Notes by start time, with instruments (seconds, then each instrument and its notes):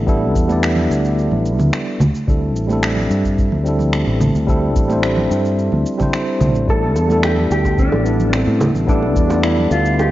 Already playing: fretless electric bass A1, tine electric piano G3 B3 D4 E4 A4
0.07 tine electric piano G3 B3 D4 E4 A4, kick, shaker
0.35 fretless electric bass E2, kick, shaker
0.47 tine electric piano G3 B3 D4 E4, high conga, shaker
0.52 tine electric piano D5
0.63 finger snap, shaker
0.76 low conga
0.90 fretless electric bass D2, shaker
1.05 shaker
1.18 shaker
1.31 fretless electric bass A1, high conga, low conga
1.46 shaker
1.59 fretless electric bass D2, low conga, shaker
1.73 finger snap, shaker
2.00 fretless electric bass D2, high conga, low conga, shaker
2.15 shaker
2.27 fretless electric bass D2, tine electric piano G3 C4 D4 E4 A4, kick, shaker
2.55 fretless electric bass A1, shaker
2.67 tine electric piano G3 C4 D4 E4, high conga, shaker
2.73 tine electric piano A4
2.83 finger snap
2.97 low conga
3.10 fretless electric bass G2, shaker
3.24 kick, shaker
3.38 kick, shaker
3.52 fretless electric bass D2, high conga, low conga
3.63 tine electric piano G3 C4 D4 E4, shaker
3.68 tine electric piano A4
3.79 low conga, shaker
3.93 finger snap, shaker
4.07 fretless electric bass A1
4.20 high conga, low conga, shaker
4.35 fretless electric bass D2, shaker
4.47 tine electric piano G3 C4 D4 E4 A4, kick, shaker
4.76 fretless electric bass A1, kick, shaker
4.88 tine electric piano G3 C4 D4 E4, high conga, shaker
4.93 tine electric piano C5
5.03 finger snap, shaker
5.17 low conga
5.31 fretless electric bass G2, shaker
5.45 shaker
5.59 shaker
5.72 fretless electric bass D2, high conga, low conga
5.86 shaker
5.98 tine electric piano G3 C4 D4 E4, kick, low conga, shaker
6.03 tine electric piano C5
6.13 finger snap, shaker
6.40 fretless electric bass C2, high conga, low conga, shaker
6.55 fretless electric bass A1, shaker
6.67 fretless electric bass A1, tine electric piano G3 B3 D4 E4 A4, clean electric guitar A4, kick, shaker
6.96 fretless electric bass E2, high bongo, shaker
7.07 tine electric piano G3 B3 D4, high conga, shaker
7.11 tine electric piano E4 A4
7.23 clean electric guitar G4, finger snap, high bongo, shaker
7.37 low conga
7.51 fretless electric bass D2, clean electric guitar G4, shaker
7.65 kick, high bongo, shaker
7.78 clean electric guitar D4, kick, shaker
7.92 fretless electric bass A1, high bongo, high conga, low conga
8.03 tine electric piano G3 B3 D4 E4, shaker
8.08 tine electric piano A4
8.20 low conga, shaker
8.33 clean electric guitar C4, finger snap, high bongo, shaker
8.47 fretless electric bass A2
8.61 high bongo, high conga, low conga, shaker
8.74 fretless electric bass A1, shaker
8.87 tine electric piano G3 B3 D4 E4 A4, clean electric guitar D4, kick, shaker
9.02 high bongo
9.15 fretless electric bass E2, kick, shaker
9.27 tine electric piano G3 B3 D4 E4, high bongo, high conga, shaker
9.32 tine electric piano D5
9.43 clean electric guitar E4, finger snap, shaker
9.57 low conga
9.71 fretless electric bass D2, clean electric guitar F4, high bongo, shaker
9.85 shaker
9.99 clean electric guitar G4, high bongo, shaker